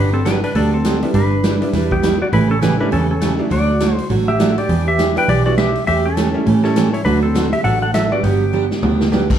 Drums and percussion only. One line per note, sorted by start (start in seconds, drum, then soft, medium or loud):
0.26 snare medium
0.26 closed hi-hat medium
0.44 open hi-hat soft
0.55 kick soft
0.55 open hi-hat soft
0.85 snare medium
0.85 closed hi-hat medium
1.02 open hi-hat soft
1.14 kick soft
1.14 open hi-hat soft
1.44 snare medium
1.44 closed hi-hat medium
1.62 open hi-hat soft
1.73 kick soft
1.73 snare soft
1.73 open hi-hat soft
1.91 kick medium
2.03 snare medium
2.03 closed hi-hat medium
2.33 kick soft
2.33 open hi-hat soft
2.62 snare medium
2.62 closed hi-hat medium
2.92 kick soft
2.92 open hi-hat soft
3.21 snare medium
3.21 closed hi-hat medium
3.51 kick soft
3.51 open hi-hat soft
3.80 snare medium
3.80 closed hi-hat medium
3.98 open hi-hat soft
4.10 kick soft
4.10 open hi-hat soft
4.40 snare medium
4.40 closed hi-hat medium
4.58 open hi-hat soft
4.69 kick soft
4.69 open hi-hat soft
4.99 snare medium
4.99 closed hi-hat medium
5.17 open hi-hat soft
5.28 kick soft
5.28 open hi-hat soft
5.58 snare medium
5.58 closed hi-hat medium
5.75 open hi-hat soft
5.87 kick soft
5.87 open hi-hat soft
6.17 snare medium
6.17 closed hi-hat medium
6.46 kick soft
6.46 open hi-hat soft
6.64 snare soft
6.76 snare medium
6.76 closed hi-hat medium
6.94 open hi-hat soft
7.05 kick soft
7.05 open hi-hat soft
7.35 snare medium
7.35 closed hi-hat medium
7.53 open hi-hat soft
7.64 kick soft
7.64 open hi-hat soft
7.94 snare medium
7.94 closed hi-hat medium
8.23 kick soft
8.23 open hi-hat soft
8.71 snare medium
8.83 mid tom medium
9.00 snare medium
9.12 snare medium
9.30 kick medium
9.30 crash medium